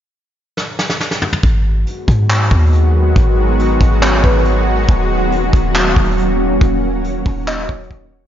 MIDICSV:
0, 0, Header, 1, 5, 480
1, 0, Start_track
1, 0, Key_signature, 5, "minor"
1, 0, Tempo, 431655
1, 1593, Time_signature, 4, 2, 24, 8
1, 9196, End_track
2, 0, Start_track
2, 0, Title_t, "Synth pluck"
2, 0, Program_c, 0, 84
2, 4469, Note_on_c, 0, 73, 90
2, 4699, Note_off_c, 0, 73, 0
2, 4719, Note_on_c, 0, 71, 75
2, 4945, Note_off_c, 0, 71, 0
2, 8314, Note_on_c, 0, 75, 94
2, 8541, Note_off_c, 0, 75, 0
2, 8551, Note_on_c, 0, 73, 80
2, 9196, Note_off_c, 0, 73, 0
2, 9196, End_track
3, 0, Start_track
3, 0, Title_t, "Ambient pad"
3, 0, Program_c, 1, 92
3, 1593, Note_on_c, 1, 51, 80
3, 1594, Note_on_c, 1, 54, 75
3, 1594, Note_on_c, 1, 66, 86
3, 1595, Note_on_c, 1, 56, 74
3, 1595, Note_on_c, 1, 59, 73
3, 5395, Note_off_c, 1, 54, 0
3, 5396, Note_off_c, 1, 56, 0
3, 5396, Note_off_c, 1, 59, 0
3, 5437, Note_on_c, 1, 54, 75
3, 5437, Note_on_c, 1, 58, 73
3, 5437, Note_on_c, 1, 61, 74
3, 9196, Note_off_c, 1, 51, 0
3, 9196, Note_off_c, 1, 54, 0
3, 9196, Note_off_c, 1, 58, 0
3, 9196, Note_off_c, 1, 61, 0
3, 9196, Note_off_c, 1, 66, 0
3, 9196, End_track
4, 0, Start_track
4, 0, Title_t, "808-style bass"
4, 0, Program_c, 2, 38
4, 1595, Note_on_c, 2, 32, 108
4, 2055, Note_off_c, 2, 32, 0
4, 2312, Note_on_c, 2, 44, 103
4, 2774, Note_off_c, 2, 44, 0
4, 2793, Note_on_c, 2, 39, 104
4, 3484, Note_off_c, 2, 39, 0
4, 3514, Note_on_c, 2, 32, 108
4, 4205, Note_off_c, 2, 32, 0
4, 4233, Note_on_c, 2, 32, 101
4, 4694, Note_off_c, 2, 32, 0
4, 4712, Note_on_c, 2, 32, 103
4, 5404, Note_off_c, 2, 32, 0
4, 5434, Note_on_c, 2, 27, 108
4, 6125, Note_off_c, 2, 27, 0
4, 6152, Note_on_c, 2, 27, 104
4, 6614, Note_off_c, 2, 27, 0
4, 6632, Note_on_c, 2, 27, 109
4, 7324, Note_off_c, 2, 27, 0
4, 7354, Note_on_c, 2, 27, 104
4, 8045, Note_off_c, 2, 27, 0
4, 8071, Note_on_c, 2, 27, 102
4, 8533, Note_off_c, 2, 27, 0
4, 8551, Note_on_c, 2, 27, 105
4, 8783, Note_off_c, 2, 27, 0
4, 8792, Note_on_c, 2, 27, 101
4, 9196, Note_off_c, 2, 27, 0
4, 9196, End_track
5, 0, Start_track
5, 0, Title_t, "Drums"
5, 636, Note_on_c, 9, 38, 67
5, 747, Note_off_c, 9, 38, 0
5, 877, Note_on_c, 9, 38, 83
5, 988, Note_off_c, 9, 38, 0
5, 997, Note_on_c, 9, 38, 85
5, 1108, Note_off_c, 9, 38, 0
5, 1117, Note_on_c, 9, 38, 89
5, 1228, Note_off_c, 9, 38, 0
5, 1236, Note_on_c, 9, 38, 99
5, 1347, Note_off_c, 9, 38, 0
5, 1355, Note_on_c, 9, 45, 103
5, 1466, Note_off_c, 9, 45, 0
5, 1475, Note_on_c, 9, 45, 108
5, 1587, Note_off_c, 9, 45, 0
5, 1595, Note_on_c, 9, 36, 110
5, 1595, Note_on_c, 9, 42, 66
5, 1706, Note_off_c, 9, 36, 0
5, 1706, Note_off_c, 9, 42, 0
5, 2076, Note_on_c, 9, 42, 74
5, 2187, Note_off_c, 9, 42, 0
5, 2311, Note_on_c, 9, 42, 69
5, 2313, Note_on_c, 9, 36, 97
5, 2423, Note_off_c, 9, 42, 0
5, 2424, Note_off_c, 9, 36, 0
5, 2554, Note_on_c, 9, 42, 73
5, 2558, Note_on_c, 9, 39, 104
5, 2665, Note_off_c, 9, 42, 0
5, 2670, Note_off_c, 9, 39, 0
5, 2793, Note_on_c, 9, 36, 96
5, 2795, Note_on_c, 9, 42, 48
5, 2876, Note_off_c, 9, 42, 0
5, 2876, Note_on_c, 9, 42, 46
5, 2904, Note_off_c, 9, 36, 0
5, 2957, Note_off_c, 9, 42, 0
5, 2957, Note_on_c, 9, 42, 48
5, 3032, Note_off_c, 9, 42, 0
5, 3032, Note_on_c, 9, 42, 70
5, 3144, Note_off_c, 9, 42, 0
5, 3514, Note_on_c, 9, 36, 111
5, 3514, Note_on_c, 9, 42, 66
5, 3625, Note_off_c, 9, 42, 0
5, 3626, Note_off_c, 9, 36, 0
5, 3995, Note_on_c, 9, 42, 71
5, 4107, Note_off_c, 9, 42, 0
5, 4233, Note_on_c, 9, 36, 92
5, 4233, Note_on_c, 9, 42, 74
5, 4344, Note_off_c, 9, 36, 0
5, 4344, Note_off_c, 9, 42, 0
5, 4474, Note_on_c, 9, 42, 73
5, 4478, Note_on_c, 9, 39, 104
5, 4585, Note_off_c, 9, 42, 0
5, 4589, Note_off_c, 9, 39, 0
5, 4713, Note_on_c, 9, 36, 90
5, 4714, Note_on_c, 9, 42, 48
5, 4794, Note_off_c, 9, 42, 0
5, 4794, Note_on_c, 9, 42, 47
5, 4824, Note_off_c, 9, 36, 0
5, 4874, Note_off_c, 9, 42, 0
5, 4874, Note_on_c, 9, 42, 50
5, 4951, Note_off_c, 9, 42, 0
5, 4951, Note_on_c, 9, 42, 75
5, 5062, Note_off_c, 9, 42, 0
5, 5433, Note_on_c, 9, 42, 66
5, 5434, Note_on_c, 9, 36, 114
5, 5544, Note_off_c, 9, 42, 0
5, 5545, Note_off_c, 9, 36, 0
5, 5914, Note_on_c, 9, 42, 70
5, 6025, Note_off_c, 9, 42, 0
5, 6150, Note_on_c, 9, 42, 76
5, 6152, Note_on_c, 9, 36, 97
5, 6262, Note_off_c, 9, 42, 0
5, 6263, Note_off_c, 9, 36, 0
5, 6392, Note_on_c, 9, 42, 75
5, 6397, Note_on_c, 9, 39, 103
5, 6504, Note_off_c, 9, 42, 0
5, 6508, Note_off_c, 9, 39, 0
5, 6632, Note_on_c, 9, 36, 92
5, 6633, Note_on_c, 9, 42, 47
5, 6713, Note_off_c, 9, 42, 0
5, 6713, Note_on_c, 9, 42, 47
5, 6743, Note_off_c, 9, 36, 0
5, 6793, Note_off_c, 9, 42, 0
5, 6793, Note_on_c, 9, 42, 49
5, 6870, Note_off_c, 9, 42, 0
5, 6870, Note_on_c, 9, 42, 72
5, 6981, Note_off_c, 9, 42, 0
5, 7353, Note_on_c, 9, 36, 108
5, 7353, Note_on_c, 9, 42, 65
5, 7464, Note_off_c, 9, 36, 0
5, 7464, Note_off_c, 9, 42, 0
5, 7833, Note_on_c, 9, 42, 69
5, 7944, Note_off_c, 9, 42, 0
5, 8070, Note_on_c, 9, 46, 54
5, 8071, Note_on_c, 9, 36, 95
5, 8181, Note_off_c, 9, 46, 0
5, 8183, Note_off_c, 9, 36, 0
5, 8316, Note_on_c, 9, 39, 110
5, 8427, Note_off_c, 9, 39, 0
5, 8552, Note_on_c, 9, 36, 92
5, 8633, Note_on_c, 9, 42, 45
5, 8663, Note_off_c, 9, 36, 0
5, 8713, Note_off_c, 9, 42, 0
5, 8713, Note_on_c, 9, 42, 60
5, 8789, Note_off_c, 9, 42, 0
5, 8789, Note_on_c, 9, 42, 73
5, 8792, Note_on_c, 9, 36, 89
5, 8901, Note_off_c, 9, 42, 0
5, 8903, Note_off_c, 9, 36, 0
5, 9196, End_track
0, 0, End_of_file